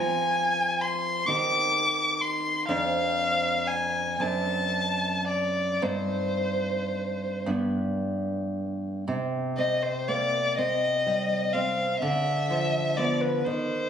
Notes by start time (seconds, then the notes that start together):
Already playing: F3 C4 F4 G#5
0.81 C6
1.27 D#3 C4 G4 D6
2.21 C6
2.67 F2 C4 D4 F5
3.67 G#5
4.20 F#2 C4 D4 A5
5.27 D5
5.82 G2 C4 D#4 C5
7.46 G2 B3 D4
9.08 C3
9.57 C4 D#5
9.83 C5
10.08 A#3 D5
10.58 C4 D#5
11.06 G3
11.53 C4 F5
12.00 D3 E5
12.50 F3
12.97 F3 B3 D5
13.21 B4
13.45 D#3 C5